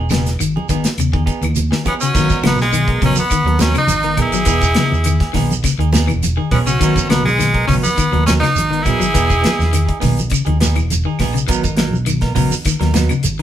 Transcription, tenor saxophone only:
1.88 1.94 B3 medium
2.01 2.41 C#4 medium
2.46 2.59 B3 medium
2.62 3.01 G#3 medium
3.05 3.18 C#4 medium
3.19 3.62 B3 medium
3.61 3.76 C#4 medium
3.78 4.17 D#4 loud
4.22 5.33 E4 loud
6.51 6.58 B3 medium
6.67 7.07 C#4 medium
7.10 7.24 B3 medium
7.25 7.65 G#3 medium
7.67 7.74 C#4 medium
7.83 8.24 B3 medium
8.26 8.33 C#4 medium
8.40 8.84 D#4 loud
8.83 10.01 E4 loud

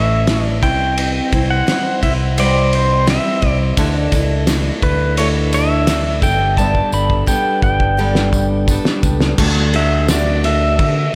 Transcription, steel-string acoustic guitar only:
0.00 0.28 A2 medium
0.00 0.63 E3 medium
0.00 0.26 A3 medium
0.00 0.26 C#4 medium
0.00 0.28 E4 medium
0.00 0.28 A4 medium
0.27 0.63 A3 medium
0.27 0.63 C#4 medium
0.27 0.62 E4 medium
0.27 0.62 A4 medium
0.63 1.33 C3 soft
0.63 1.33 G3 medium
0.63 1.33 C4 medium
0.63 1.33 E4 medium
0.63 1.31 C5 medium
1.33 1.67 C4 soft
1.33 1.67 E4 soft
1.33 1.68 C5 medium
1.67 2.02 G3 medium
1.67 2.03 C4 medium
1.67 2.03 E4 medium
1.67 2.01 C5 medium
2.02 2.37 C4 soft
2.02 2.38 E4 soft
2.02 2.38 C5 medium
2.37 3.08 C3 medium
2.37 3.05 G3 medium
2.37 3.06 C4 medium
2.37 3.07 E4 medium
2.37 3.08 C5 medium
3.07 3.77 G3 medium
3.07 3.77 C4 medium
3.07 3.77 E4 medium
3.07 3.78 C5 medium
3.78 4.13 D3 loud
3.78 4.13 A3 medium
3.78 4.13 D4 loud
3.78 4.13 E4 medium
3.78 4.11 A4 loud
4.12 4.47 D4 soft
4.12 4.48 E4 medium
4.12 4.48 A4 medium
4.47 5.18 A3 medium
4.47 5.18 D4 medium
4.47 5.18 E4 medium
4.47 5.19 A4 medium
5.18 5.88 D3 medium
5.18 5.87 A3 medium
5.18 5.88 D4 medium
5.18 5.88 E4 medium
5.18 5.89 A4 medium
5.88 6.23 A3 medium
5.88 6.23 D4 medium
5.88 6.24 E4 medium
5.88 6.22 A4 medium
6.23 6.57 G3 soft
6.23 6.58 B3 soft
6.23 6.58 D4 soft
6.23 6.58 A4 soft
6.58 6.93 G2 medium
6.58 6.93 D3 medium
6.58 6.93 G3 medium
6.58 6.93 B3 medium
6.58 6.93 D4 medium
6.58 6.92 A4 medium
6.93 7.25 G3 soft
6.93 7.27 B3 soft
6.93 7.27 D4 medium
6.93 7.27 A4 soft
7.26 7.97 G3 medium
7.26 7.98 B3 medium
7.26 7.98 D4 medium
7.26 7.98 A4 medium
7.97 8.68 G2 medium
7.97 8.68 D3 medium
7.97 8.67 G3 medium
7.97 8.68 B3 medium
7.97 8.69 D4 medium
7.97 8.69 A4 medium
8.69 9.38 G3 medium
8.69 9.39 B3 medium
8.69 9.38 D4 medium
8.69 9.39 A4 medium
9.38 9.74 D3 medium
9.38 9.74 A3 loud
9.38 9.74 D4 medium
9.38 9.73 F#4 loud
9.38 9.72 A4 medium
9.73 10.08 D4 soft
9.73 10.09 F#4 soft
9.73 10.09 A4 medium
10.08 10.44 A3 medium
10.08 10.44 D4 medium
10.08 10.44 F#4 medium
10.08 10.42 A4 medium
10.43 11.15 D4 soft
10.43 11.15 F#4 medium
10.43 11.15 A4 soft

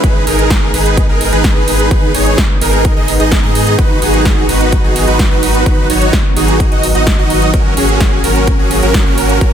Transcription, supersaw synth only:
0.04 0.24 D#4 medium
0.04 0.24 G#4 medium
0.04 0.24 B4 loud
0.27 0.71 D#4 medium
0.27 0.71 G#4 medium
0.27 0.71 A#4 loud
0.74 1.06 D#4 medium
0.74 1.06 G#4 medium
0.74 1.06 B4 medium
1.09 1.30 D#4 medium
1.09 1.30 G#4 medium
1.09 1.30 A#4 loud
1.33 1.53 D#4 loud
1.33 1.53 G#4 medium
1.33 1.53 B4 loud
1.56 1.88 D#4 medium
1.56 1.88 G#4 medium
1.56 1.88 B4 medium
1.91 2.12 D#4 medium
1.91 2.12 G#4 medium
1.91 2.12 B4 medium
2.14 2.38 D#4 medium
2.14 2.38 G#4 medium
2.14 2.38 C#5 medium
2.61 2.94 D#4 medium
2.61 2.94 G#4 medium
2.61 2.94 A#4 medium
2.96 3.11 D#4 loud
2.96 3.11 G#4 medium
2.96 3.11 D#5 loud
3.20 3.40 D#4 medium
3.20 3.40 G#4 medium
3.20 3.40 D#5 loud
3.43 3.76 D#4 loud
3.43 3.76 G#4 medium
3.43 3.76 D#5 loud
3.79 3.99 D#4 loud
3.79 3.99 F#4 medium
3.79 3.99 B4 loud
4.02 4.46 D#4 medium
4.02 4.46 F#4 medium
4.02 4.46 G#4 loud
4.49 4.81 D#4 medium
4.49 4.81 F#4 medium
4.49 4.81 B4 medium
4.84 5.05 D#4 medium
4.84 5.05 F#4 medium
4.84 5.05 G#4 loud
5.08 5.28 D#4 loud
5.08 5.28 F#4 medium
5.08 5.28 B4 loud
5.31 5.63 D#4 medium
5.31 5.63 F#4 medium
5.31 5.63 B4 medium
5.66 5.87 D#4 medium
5.66 5.87 F#4 medium
5.66 5.87 B4 medium
5.90 6.13 D#4 medium
5.90 6.13 F#4 medium
5.90 6.13 C#5 medium
6.37 6.69 D#4 medium
6.37 6.69 F#4 medium
6.37 6.69 G#4 medium
6.72 6.86 D#4 medium
6.72 6.86 F#4 medium
6.72 6.86 D#5 loud
6.95 7.15 D#4 medium
6.95 7.15 F#4 medium
6.95 7.15 D#5 medium
7.19 7.51 D#4 loud
7.19 7.51 F#4 medium
7.19 7.51 D#5 loud
7.54 7.74 C#4 medium
7.54 7.74 F#4 medium
7.54 7.74 A#4 loud
7.77 8.21 C#4 medium
7.77 8.21 F#4 medium
7.77 8.21 G#4 loud
8.24 8.56 C#4 medium
8.24 8.56 F#4 medium
8.24 8.56 A#4 medium
8.59 8.80 C#4 medium
8.59 8.80 F#4 medium
8.59 8.80 G#4 loud
8.83 9.03 C#4 loud
8.83 9.03 F#4 medium
8.83 9.03 A#4 loud
9.06 9.38 C#4 medium
9.06 9.38 F#4 medium
9.06 9.38 A#4 medium
9.41 9.53 C#4 medium
9.41 9.53 F#4 medium
9.41 9.53 A#4 medium

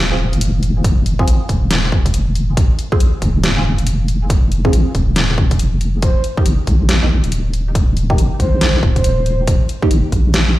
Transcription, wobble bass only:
0.00 0.31 D#1 medium
0.33 1.29 F1 medium
1.28 1.40 A#1 loud
1.49 1.91 D#1 loud
1.92 2.56 F1 medium
2.57 2.69 F1 loud
3.00 3.13 A#1 loud
3.22 3.77 D#1 loud
3.79 4.74 F1 loud
4.73 4.85 A#1 loud
4.95 5.39 D#1 medium
5.38 6.02 F1 medium
6.03 6.15 D#1 loud
6.45 6.58 G1 loud
6.67 7.22 A#1 medium
7.24 8.20 D#1 loud
8.18 8.31 G1 loud
8.40 8.82 A#1 loud
8.83 9.47 D#1 medium
9.48 9.60 D#1 loud
9.91 10.03 G1 medium
10.12 10.59 A#1 loud

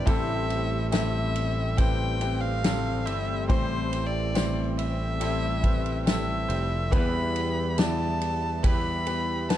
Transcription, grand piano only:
0.06 1.31 A2 medium
0.06 0.88 C4 loud
0.06 0.88 E4 medium
0.06 0.88 G4 loud
0.06 0.88 A4 loud
0.92 1.74 C4 medium
0.92 1.74 E4 medium
0.92 1.74 G4 medium
0.92 1.74 A4 medium
1.77 2.19 C4 medium
1.77 2.19 E4 medium
1.77 2.19 G4 medium
1.77 2.19 B4 medium
2.21 2.62 C4 medium
2.21 2.62 E4 medium
2.21 2.62 G4 medium
2.21 2.62 B4 medium
2.64 3.46 E3 medium
2.64 3.45 C4 medium
2.64 3.46 G4 medium
2.64 3.46 A4 medium
3.49 4.74 A2 medium
3.49 4.31 C4 loud
3.49 4.31 E4 medium
3.49 4.31 G4 medium
3.49 4.31 C5 loud
4.35 5.17 C4 medium
4.35 5.17 E4 medium
4.35 5.17 G4 medium
4.35 5.17 C5 medium
5.20 5.61 C4 medium
5.20 5.62 E4 medium
5.20 5.62 G4 medium
5.20 5.62 A4 medium
5.63 6.04 C4 medium
5.63 6.05 E4 medium
5.63 6.05 G4 medium
5.63 6.05 B4 medium
6.06 6.88 C4 medium
6.06 6.88 E4 medium
6.06 6.88 G4 medium
6.06 6.88 A4 medium
6.92 8.17 E3 medium
6.92 7.74 B3 loud
6.92 7.74 E4 medium
6.92 7.74 G4 medium
6.92 7.74 B4 loud
7.78 8.60 B3 medium
7.78 8.60 E4 medium
7.78 8.60 G4 medium
7.78 8.60 D5 medium
8.63 9.04 B3 medium
8.63 9.05 E4 medium
8.63 9.05 G4 medium
8.63 9.05 B4 medium
9.07 9.48 B3 medium
9.07 9.48 E4 medium
9.07 9.48 G4 medium
9.07 9.48 B4 medium
9.50 9.58 B3 medium
9.50 9.58 E4 medium
9.50 9.58 G4 medium
9.50 9.58 B4 medium

